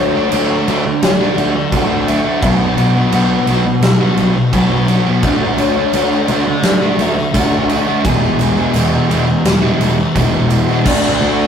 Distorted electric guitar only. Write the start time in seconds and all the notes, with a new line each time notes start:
Already playing: D3 A3 D4
0.12 A3 D4
0.31 D3 A3 D4
0.66 D3 A3 D4
0.85 muted distorted electric guitar stroke
1.19 A3 D4
1.35 D3 A3 D4
1.55 muted distorted electric guitar stroke
1.70 D3 A3 D4
2.23 A3 D4
2.42 B2 F#3 B3
2.94 F#3 B3
3.12 B2 F#3 B3
3.48 B2 F#3 B3
3.66 muted distorted electric guitar stroke
4.00 F#3 B3
4.18 B2 F#3 B3
4.37 muted distorted electric guitar stroke
4.54 B2 F#3 B3
5.06 F#3 B3
5.24 D3 A3 D4
5.77 A3 D4
5.94 D3 A3 D4
6.29 D3 A3 D4
6.47 muted distorted electric guitar stroke
6.80 A3 D4
6.98 D3 A3 D4
7.17 muted distorted electric guitar stroke
7.32 D3 A3 D4
7.86 A3 D4
8.02 E2 B2 E3
8.57 B2 E3
8.74 E2 B2 E3
9.09 E2 B2 E3
9.28 muted distorted electric guitar stroke
9.62 B2 E3
9.82 E2 B2 E3
9.98 muted distorted electric guitar stroke
10.16 E2 B2 E3
10.69 B2 E3
10.86 D3 A3 D4